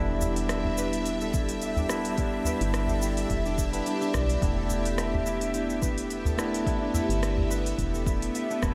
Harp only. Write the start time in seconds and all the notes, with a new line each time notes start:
Already playing: E4 A4 B4 E5
0.08 D4
0.21 E4
0.50 E4
0.78 B4
1.21 A4
1.34 E4
1.62 E5
1.78 D4
1.90 E4
2.18 E4
2.46 B4
2.89 A4
3.02 E4
3.30 E5
3.45 D4
3.58 E4
3.73 B4
3.86 D4
4.01 D4
4.14 D5
4.57 A4
4.70 E4
4.98 E5
5.13 D4
5.26 E4
5.54 E4
5.82 B4
6.25 A4
6.38 E4
6.66 E5
6.81 D4
6.94 E4
7.22 E4
7.50 B4
7.94 A4
8.06 E4
8.35 E5
8.50 D4
8.63 E4